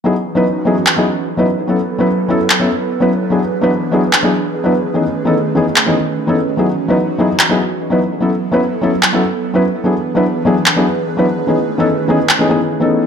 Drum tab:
CP |----x---|----x---|----x---|----x---|

CP |----x---|----x---|----x---|----x---|